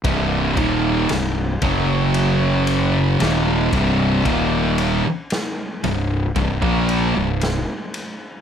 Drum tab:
RD |x-x-x-x-x-x-x-x-|x-x-x-x-x-x-x-x-|
SD |----o-------o---|----o-------o---|
BD |o-o---o-------o-|o-------oo------|